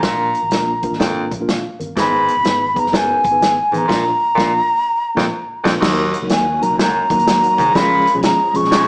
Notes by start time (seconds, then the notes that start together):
Already playing: A#5
0.02 A#1 A#2 A#3 D4 F4 A#4, kick, snare, closed hi-hat, muted conga
0.35 closed hi-hat
0.43 G#1
0.51 A#1 A#3 D4 F4 A#4, snare, closed hi-hat, high conga
0.82 A#3 D4 F4 A#4, kick, closed hi-hat
0.91 G#1, snare
0.99 F2 A#3 D4 F4 A#4, kick, snare, closed hi-hat, muted conga, low conga
1.31 A#1, kick, closed hi-hat, muted conga, low conga
1.40 A#3 D4 F4 A#4
1.48 F5, snare, closed hi-hat, high conga
1.79 G1 A#4, closed hi-hat, high conga
1.96 G#1 G#2 B3 D#4 G#4 B4 B5, kick, snare, closed hi-hat, muted conga
2.28 closed hi-hat
2.37 F#1
2.43 G#1 B3 D#4 G#4 B4, snare, closed hi-hat, high conga
2.74 B3 D#4 G#4 B4, kick, closed hi-hat
2.79 A#5
2.84 F#1, snare
2.91 F#2 B3 D#4 G#4 B4, kick, snare, closed hi-hat, muted conga
2.98 G#5
3.24 G#1, kick, closed hi-hat, muted conga
3.30 B3 D#4 G#4 B4
3.41 snare, closed hi-hat, high conga
3.72 A1 G#2 B3 D#4 G#4 B4, closed hi-hat, high conga
3.78 A#5
3.88 A#1 A#2 A#3 D4 F4 A#4, kick, snare, crash
4.35 A#1 A#2 A#3 D4 F4 A#4, kick, snare
5.15 A#1 F2 A#3 D4 F4 A#4, kick, snare
5.64 A#1 F2 A#3 D4 F4 A#4, kick, snare, crash
5.80 D#2 D#3 F#3 A#3 D#4 F#4 A#4, kick, snare, crash, muted conga
6.14 closed hi-hat
6.22 C#2 F#3 A#3 D#4 F#4 A#4
6.29 D#2 G#5, snare, closed hi-hat, high conga
6.61 F#3 A#3 D#4 F#4 A#4 A#5, closed hi-hat, low conga
6.70 C#2
6.78 F#2 A#5, snare, closed hi-hat, muted conga
7.10 D#2 F#3 A#3 D#4 F#4 A#4, kick, closed hi-hat, muted conga
7.19 closed hi-hat
7.26 F#3 A#3 D#4 F#4 A#4, snare, closed hi-hat, high conga
7.43 closed hi-hat
7.58 C2 G#2, kick, closed hi-hat, high conga
7.74 C#2 A#2 F3 G#3 C#4 F4 G#4 B5, kick, snare, closed hi-hat, muted conga
8.07 closed hi-hat
8.14 B1 F3 G#3 C#4 F4 G#4
8.23 A#5, snare, closed hi-hat, high conga
8.54 C#2 F3 G#3 C#4 F4 G#4 C#6, closed hi-hat
8.63 B1, snare
8.71 G#2, snare, closed hi-hat, muted conga, low conga